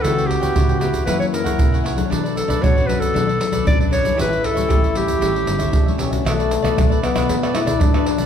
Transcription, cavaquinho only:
X:1
M:4/4
L:1/16
Q:1/4=116
K:Amix
V:1 name="Cavaquinho"
[EBcg] [Bcg] z [Bcg] [EBcg] [Bcg] [EBcg]2 [E^Acf] [Acf] z [Acf]2 [Acf] [EAcf] [Acf] | [DABd] [ABd] z [ABd] [DABd] [ABd] [DABd]2 [DABd] [ABd] z [ABd]2 [ABd] [DABd] [ABd] | [GAce] [Ace] z [Ace] [GAce] [Ace] [GAce]2 [GAce] [Ace] z [Ace]2 [Ace] [GAce] [Ace] | [K:Bm] [DABd] [ABd] z [ABd] [DABd] [ABd]2 [ABd] [DABd] [ABd]2 [ABd]2 [ABd] [DABd] [ABd] |]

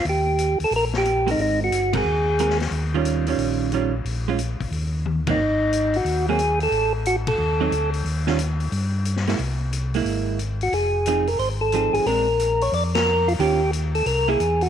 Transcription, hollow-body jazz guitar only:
X:1
M:4/4
L:1/8
Q:"Swing" 1/4=180
K:Ebmix
V:1 name="Hollow-body jazz guitar"
z6 z [A,C_GB]- | [A,C_GB]2 z [A,CGB] z2 [A,CGB] z | z [E,G,DF]2 [E,G,DF]3 [E,G,DF] z | z [A,DF] z4 z [_G,B,C] |
z4 z [_G,B,C] z2 | z4 z [^F,CE] z2 | z [E,G,DF] z4 z [A,B,_F] | z3 [^G,B,=E]3 z2 |
z2 [F,CEA] z3 [F,CEA]2 | [A,C=D] z6 z | [E,DFG] z4 [B,=E^G] z2 |]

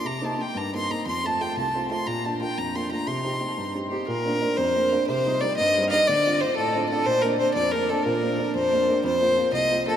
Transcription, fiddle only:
X:1
M:6/8
L:1/16
Q:3/8=120
K:Bb
V:1 name="Fiddle"
b2 a2 g2 b2 c'2 b2 | c'2 a2 g2 a4 c'2 | b2 a2 g2 b2 c'2 b2 | c'8 z2 G2 |
B6 c6 | c4 d2 e3- e/2 f/2 e2 | d4 c2 A4 A2 | c2 B2 c2 d2 B2 A2 |
B6 c6 | c6 e4 A2 |]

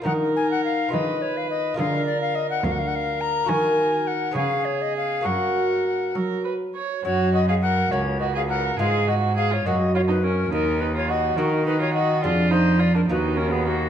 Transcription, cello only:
X:1
M:6/8
L:1/8
Q:3/8=69
K:Bbphr
V:1 name="Cello" clef=bass
E,3 E,3 | =D,3 =D,,3 | [K:F#] D,3 C,3 | F,,3 F,3 |
F,,3 C,,3 | _A,,3 F,,3 | D,,3 D,3 | =F,,3 D,,3 |]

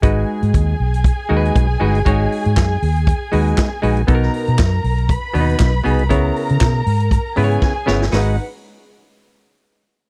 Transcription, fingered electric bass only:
X:1
M:4/4
L:1/16
Q:"Swing 16ths" 1/4=119
K:G#m
V:1 name="Fingered electric bass" clef=bass
G,,,2 z G,, D,,2 B,,,3 z D,,2 B,,,2 =G,,,2 | G,,,2 z G,, F,,2 D,,3 z D,,2 z2 A,,,2 | B,,,2 z B,, F,,2 B,,,3 z D,,2 B,,,2 ^B,,,2 | C,,2 z C, B,,2 G,,3 z G,,2 z2 =G,,,2 |
G,,,2 z12 z2 |]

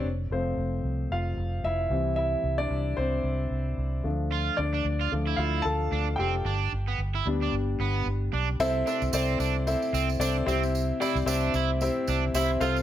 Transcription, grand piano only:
X:1
M:4/4
L:1/16
Q:"Swing 16ths" 1/4=112
K:C
V:1 name="Grand piano"
z2 c6 [Ff]4 [Ee]4 | [Ee]3 [Dd]3 [Cc]8 z2 | z2 [Dd]6 [Ff]2 [Aa]4 [Gg]2- | [Gg]12 z4 |
[CEAce]2 [CEAce]2 [CEAcd]4 [CEAce]4 [CEAcd]2 [CEGce]2- | [CEGce]2 [CEGcd]2 [CEGce]4 [CEGce]4 [CEGce]2 [CFAcf]2 |]
V:2 name="Grand piano" clef=bass
z2 [F,A,C]6 z6 [E,G,C]2- | [E,G,C]12- [E,G,C]2 [F,A,D]2 | z6 [F,A,D]2 z8 | z6 [G,B,D]8- [G,B,D]2 |
C,6 z8 C,2- | C,4 z8 z2 C,2 |]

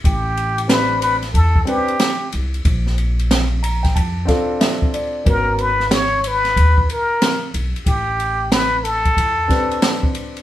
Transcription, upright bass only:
X:1
M:4/4
L:1/16
Q:"Swing 16ths" 1/4=92
K:Bblyd
V:1 name="Upright bass" clef=bass
A,,,8 E,,2 z4 C,,2 | B,,,8 F,,2 z6 | ^G,,,8 ^D,,2 z4 =B,,, z | A,,,8 E,,2 z6 |]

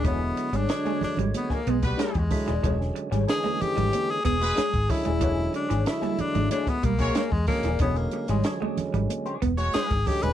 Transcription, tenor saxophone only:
X:1
M:4/4
L:1/16
Q:1/4=93
K:Emix
V:1 name="Tenor saxophone"
B,3 D3 D2 B, ^A, G, =G,2 ^G,3- | G, z3 G2 =G3 ^G G4 E2- | E2 D2 E2 D2 D B, ^A,3 G, A,2 | B, ^A,2 G,2 z6 z G2 =G B |]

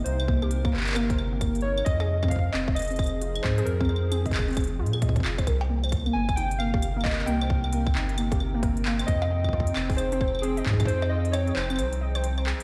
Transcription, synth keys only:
X:1
M:4/4
L:1/8
Q:"Swing 16ths" 1/4=133
K:Fdor
V:1 name="Synth keys"
c3 z B3 _d | e2 f e e3 c | B2 A2 z4 | z3 a g f2 e |
g6- g z | e3 z c2 A2 | c e _d c4 z |]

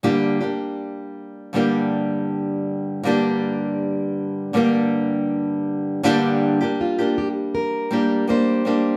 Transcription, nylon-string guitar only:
X:1
M:4/4
L:1/16
Q:"Swing 16ths" 1/4=80
K:Gm
V:1 name="Nylon-string guitar"
[G,,D,G,B,DG]2 [G,B,DG]6 [G,,D,G,B,DG]8 | [G,,D,G,B,DG]8 [G,,D,G,B,DG]8 | [G,,D,G,B,DG]3 [G,B,DG]2 [G,B,DG]4- [G,B,DG] [G,B,DG]2 [G,B,DG]2 [G,B,DG]2 |]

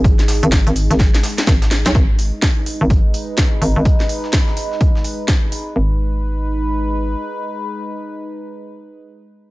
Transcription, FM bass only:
X:1
M:4/4
L:1/16
Q:"Swing 16ths" 1/4=126
K:G#m
V:1 name="FM bass" clef=bass
G,,,3 G,,,2 G,,,2 G,,,3 z2 G,,,3 B,,, | G,,,3 z4 G,,,3 z4 G,,, G,,, | z16 | G,,,12 z4 |
z16 |]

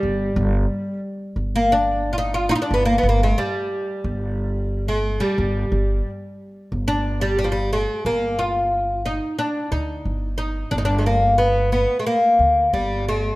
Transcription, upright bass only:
X:1
M:4/4
L:1/8
Q:1/4=90
K:none
V:1 name="Upright bass" clef=bass
G,,, G,,, z2 G,,,4 | G,,, G,,, z2 G,,,4 | G,,, G,,, z2 G,,,4 | G,,,4 z D,, G,,,2 |
G,,,4 z D,, G,,,2 |]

